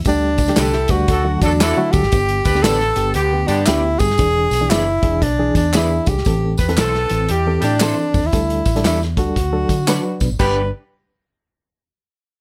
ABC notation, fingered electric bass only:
X:1
M:4/4
L:1/16
Q:"Swing" 1/4=116
K:G
V:1 name="Fingered electric bass" clef=bass
D,,4 C,,2 D,,2 D,,2 E,,3 z D,, _A,,, | G,,,2 D,,2 A,,,2 G,,,2 D,,2 G,,2 D,,2 G,,2 | E,,,2 B,,,2 F,,,2 E,,,2 B,,,2 E,,4 C,,2 | A,,,2 E,,2 B,,,2 A,,,2 E,,2 A,,3 z F,, _E,, |
D,,2 A,,,2 E,,2 D,,2 D,,2 D,3 z B,, _A,,, | G,,,2 z12 z2 |]